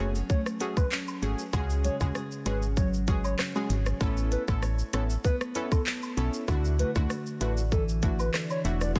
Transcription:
Already playing: F#3 A3 G#4
0.00 F#1 A3 B3 C#4 F#4 G#4 C#5
0.15 C#4, shaker
0.30 A3 C#5, kick, shaker
0.46 cross-stick, shaker
0.60 A3 C#4 F#4 G#4, closed hi-hat, cabasa, shaker
0.77 B4, kick, high woodblock, shaker
0.91 C#4, clap, shaker
1.08 high woodblock, shaker
1.22 G#1 A3 C#4 F#4 G#4, closed hi-hat, cabasa, shaker
1.39 shaker
1.53 C#2 C#3 G#3 C#4 F#4 G#4, kick, high woodblock, shaker
1.70 shaker
1.84 G#3 C#5, closed hi-hat, cabasa, shaker
2.00 C#2 G#3 C#4 F#4 G#4, kick, high woodblock, shaker
2.15 G#4, cross-stick, shaker
2.31 shaker
2.46 G#1 G#3 C#4 F#4 G#4 B4, closed hi-hat, cabasa, high woodblock, shaker
2.62 shaker
2.77 F#3 C#5, kick, shaker
2.94 shaker
3.07 G#3 C#4 F#4 G#4, kick, closed hi-hat, cabasa, shaker
3.24 C#5, high woodblock, shaker
3.39 C#4, cross-stick, clap, shaker
3.55 G#3 C#4 F#4 G#4, high woodblock, shaker
3.70 G#1 G#4, closed hi-hat, cabasa, shaker
3.86 cross-stick, shaker
4.00 A1 A3 B3 C#4 E4 A4 C#5, kick, high woodblock, shaker
4.17 shaker
4.31 E4 B4, closed hi-hat, cabasa, shaker
4.48 A1 B3 C#4 E4 A4, kick, high woodblock, shaker
4.62 C#5, cross-stick, shaker
4.79 shaker
4.93 A1 B3 C#4 E4 A4 C#5, cross-stick, closed hi-hat, cabasa, high woodblock, shaker
5.10 shaker
5.24 B3 B4, kick, shaker
5.41 cross-stick, shaker
5.55 B3 C#4 E4 A4 C#5, closed hi-hat, cabasa, shaker
5.72 A4, kick, high woodblock, shaker
5.86 A4, clap, shaker
6.02 high woodblock, shaker
6.17 B1 B3 C#4 E4 A4 C#5, closed hi-hat, cabasa, shaker
6.34 shaker
6.48 D2 D3 A3 D4 E4 F#4, kick, high woodblock, shaker
6.65 shaker
6.79 A3 B4, closed hi-hat, cabasa, shaker
6.95 D2 A3 D4 E4 F#4, kick, high woodblock, shaker
7.10 F#4, cross-stick, shaker
7.26 shaker
7.41 A1 A3 D4 E4 F#4 B4, closed hi-hat, cabasa, high woodblock, shaker
7.57 shaker
7.72 E3 A4, kick, shaker
7.89 shaker
8.02 A3 D4 E4 F#4, kick, closed hi-hat, cabasa, shaker
8.19 B4, high woodblock, shaker
8.34 D4, cross-stick, clap, shaker
8.50 C#5, high woodblock, shaker
8.64 E1 A3 D4 E4 F#4, closed hi-hat, cabasa, shaker
8.81 D5, cross-stick, shaker
8.95 F#1 F#3 A3 C#4 F#4 G#4, kick, high woodblock, shaker

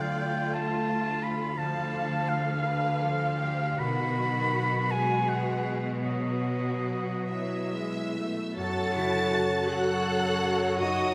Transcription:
Already playing: D2 D3 A3 D4 F4 B4 D5
0.01 F5
0.17 F4 G5
0.53 F4 A4 A5
0.87 F5
1.22 F4 B5
1.58 D3 F3 A4 F5 A5
1.93 D4
2.28 F4 F5
2.63 D3 A4 B4 F5
3.00 F3 A4 D5
3.38 F3 F4 G4
3.78 B2 D#3 F#4 B5
4.17 F#3
4.53 F#4
4.90 G#3 G#4 B4 G#5
5.27 F#5
5.65 F#4
6.03 B2 F#3 F#4 D#5
6.44 F#3
6.87 F#4
7.29 F#3 E4 B4 E5 E6
7.73 G#3
8.15 A3 F#4
8.57 F#2 F#3 F#4 A4 C#5 F#5 A5 A6
8.96 C#3 E4
9.33 F#4
9.70 F#4 A4 C#5 F#5 F#6
10.06 F#4
10.42 C#4
10.79 F#2 D#4 F#4 D#5 D#6

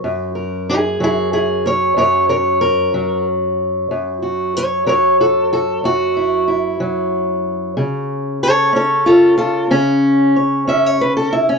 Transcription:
Already playing: F#3
0.04 F#2
0.35 A#4
0.69 E4 G#4
1.00 F#3 E4 G#4
1.33 E4 G#4
1.66 A#4 C#5
1.97 F#2 A#4 C#5
2.29 A#4 C#5
2.61 A#4
2.94 F#3
3.91 F#2
4.23 F#4
4.57 A#4 C#5
4.86 F#3 A#4 C#5
5.21 F#4 A4
5.53 F#4 A4
5.84 F#2 F#4
6.17 E4
6.48 E4
6.80 F#3
7.77 C#3
8.43 A4 C#5
8.73 C#4 A4 C#5
9.06 F4 A4
9.38 F4 A4
9.71 C#3 C#4
10.36 C#5
10.67 C#4 E5
10.86 C#5
11.01 B4
11.17 A4
11.33 E4
11.49 C#4

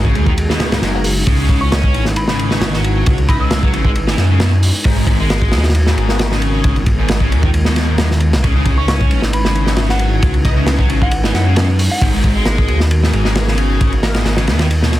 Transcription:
Already playing: G#1 G#3 B3 D#4 F#4 G#4
0.05 C#3, kick
0.15 D#2 G#2, ride
0.26 D#3, kick
0.38 ride
0.49 B2, snare
0.60 C#2, snare, ride
0.72 G#2, snare, ride
0.82 F#1 F#2, snare, ride
0.94 A#3 B3 F#4 A#4
1.04 open hi-hat
1.27 C#2 C#3 C#4 E4 B4, kick, ride
1.39 C#3
1.49 C#3, kick, ride
1.61 C#4 C#6
1.72 C#6, snare, ride
1.83 kick
1.94 G#1, ride
2.05 snare
2.16 B5, ride
2.28 C#3 B5, snare
2.39 ride
2.51 D#4 E4 B4 C#5, snare
2.61 snare, ride
2.73 F#3, snare
2.84 ride
3.06 C#2, kick, ride
3.18 ride
3.29 D#4 E4 B4 D#5 B5, kick, ride
3.40 C#3 E6
3.51 snare, ride
3.63 F#3, kick
3.73 G#1 C#3, ride
3.85 G#3, kick
3.95 ride
4.07 E3, snare
4.18 F#2, snare, ride
4.30 C#3
4.40 B2, snare, ride
4.63 open hi-hat
4.84 G#1 G#2 G#3 B3 F#4 A#4, kick, ride
4.97 G#2
5.07 G#2, kick, ride
5.20 G#3
5.30 snare, ride
5.42 kick
5.52 D#2, snare, ride
5.58 snare, ride
5.64 snare, ride
5.70 snare, ride
5.75 ride
5.86 G#2, snare
5.97 G#1, ride
6.09 A#3 B3 F#4 G#4, snare
6.19 snare, ride
6.31 C#3, snare
6.42 ride
6.64 G#1 F4, kick, ride
6.76 ride
6.86 kick, ride
6.98 G#2
7.08 snare, ride
7.20 C#3, kick
7.31 D#2 G#2, ride
7.43 D#3, kick
7.54 ride
7.65 B2, snare
7.76 snare, ride
7.88 G#2
7.98 F#2, snare, ride
8.11 snare
8.20 ride
8.33 B1, snare, ride
8.43 C#2 C#3 C#4 D#4 E4 B4, kick, ride
8.55 C#3
8.65 C#3, kick, ride
8.77 C#4 C#6
8.88 C#6, snare, ride
9.01 kick
9.11 G#1, ride
9.22 snare
9.33 B5, ride
9.45 C#3 B5, snare
9.55 ride
9.67 D#4 E4 B4 C#5, snare
9.77 snare, ride
9.89 F#3 F#5, snare
9.99 ride
10.22 C#2, kick, ride
10.34 ride
10.45 D#4 E4 B4 D#5, kick, ride
10.57 C#3
10.67 snare, ride
10.79 F#3, kick
10.90 G#1 C#3, ride
11.02 G#3 F#5, kick
11.11 ride
11.24 E3, snare
11.34 F#2 F#5, snare, ride
11.46 C#3
11.56 C#3, snare, ride
11.79 open hi-hat
11.91 F#5
12.01 G#1 G#2 B3 F#4 A#4, kick, ride
12.14 G#2
12.24 G#2, kick, ride
12.36 G#3
12.46 snare, ride
12.58 kick
12.68 D#2, ride
12.80 snare
12.91 ride
13.03 G#2, snare
13.13 G#1, ride
13.25 A#3 B3 F#4 G#4, snare
13.35 snare, ride
13.48 C#3, snare
13.58 ride
13.81 G#1, kick, ride
13.92 ride
14.03 A#3 B3 F#4 A#4, snare, ride
14.14 G#2, snare, ride
14.26 snare, ride
14.37 C#3, snare, ride
14.47 D#2 G#2, snare, ride
14.59 D#3, snare, ride
14.71 ride
14.82 B2, snare
14.92 C#2, snare, ride

